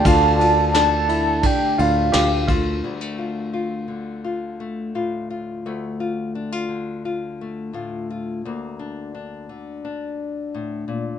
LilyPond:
<<
  \new Staff \with { instrumentName = "Soft synth lead" } { \time 4/4 \key d \minor \tempo 4 = 86 a''4 a''4 g''8 f''4 r8 | r1 | r1 | r1 | }
  \new Staff \with { instrumentName = "Felt piano" } { \time 4/4 \key d \minor f'8 d'8 d'8 e'8 d'8 f'8 g'8 f'8 | r1 | r1 | r1 | }
  \new Staff \with { instrumentName = "French horn" } { \time 4/4 \key d \minor d'2.~ d'8 r8 | r1 | r1 | r1 | }
  \new Staff \with { instrumentName = "Nylon-string guitar" } { \time 4/4 \key d \minor << { f'8 f'4. a4 f'8 a8 | g16 a16 f'8 f'4 f'8 a8 f'8 f'8 | a8 f'8 d'16 f'8. f'8 a8 f'8 f'8 | bes8 d'8 d'4 d'2 | } \\ { <d, d>4 d4. a,4. | d,4. d4. a,4 | d,4. d4. a,4 | d,4. d4. a,8 bes,8 | } >> }
  \new Staff \with { instrumentName = "Fretless electric bass" } { \clef bass \time 4/4 \key d \minor d,2 r8 d,8 d,4 | r1 | r1 | r1 | }
  \new DrumStaff \with { instrumentName = "Drums" } \drummode { \time 4/4 <bd cymr>8 cymr8 <cymr sn>8 cymr8 <bd cymr>8 cymr8 <cymr sn>8 <bd cymr>8 | r4 r4 r4 r4 | r4 r4 r4 r4 | r4 r4 r4 r4 | }
>>